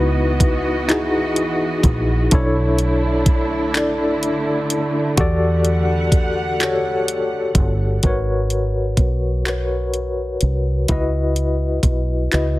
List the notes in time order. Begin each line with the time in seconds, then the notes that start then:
Already playing: C#2 E3 B3 D#4 E4 F#4 B4 D#5
0.40 kick, closed hi-hat
0.88 D#4 E4 F#4 G#4, clap, closed hi-hat
1.36 closed hi-hat
1.83 A#1, kick, closed hi-hat
2.31 B1 D3 A3 D4 E4 A4, kick, closed hi-hat
2.35 C#5
2.79 closed hi-hat
3.26 kick, closed hi-hat
3.74 D4 E4 A4 D5, clap, closed hi-hat
4.23 closed hi-hat
4.70 D#2, closed hi-hat
5.17 E2 G3 F#4 G4 A4 D5 F#5, kick, closed hi-hat
5.65 closed hi-hat
6.12 kick, closed hi-hat
6.60 F#4 G4 A4 C#5, clap, closed hi-hat
7.08 closed hi-hat
7.55 G1, kick, closed hi-hat
8.03 G#1 F#4 A#4 B4 C#5, kick, closed hi-hat
8.50 closed hi-hat
8.97 B1, kick, closed hi-hat
9.46 F#4 A#4 B4 C#5, clap, closed hi-hat
9.94 closed hi-hat
10.41 C2, closed hi-hat
10.88 C#2 E4 F#4 B4 D#5, kick, closed hi-hat
11.36 closed hi-hat
11.83 B1, kick, closed hi-hat
12.31 C#2 E4 F#4 B4 D#5, clap, closed hi-hat